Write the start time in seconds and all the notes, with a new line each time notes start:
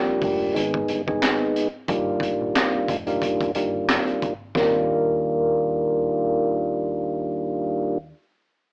Already playing: F3 G3 A#3 D4 G4
0.08 muted fingered electric bass stroke
0.22 F1, kick, open hi-hat
0.53 G#1 D#3 G#3 B3 D#4 G#4, closed hi-hat
0.74 kick
0.88 G1, closed hi-hat
1.07 D#3 G#3 B3 D#4 G#4, kick
1.22 snare, clap, closed hi-hat
1.56 closed hi-hat
1.88 G1 D#3 G3 A#3 D4 F4, kick, closed hi-hat
2.20 kick, closed hi-hat
2.41 A#1
2.55 snare, clap, closed hi-hat
2.75 muted fingered electric bass stroke
2.88 F1, kick, closed hi-hat
3.07 D#3 G3 A#3 D4 F4, closed hi-hat
3.22 kick, closed hi-hat
3.41 kick, closed hi-hat
3.55 G1 D#3 G3 A#3 D4 F4, closed hi-hat
3.89 snare, clap, closed hi-hat
4.07 closed hi-hat
4.22 kick, closed hi-hat
4.55 D#2 D#3 G3 A#3 D4 F4 A#4, kick, snare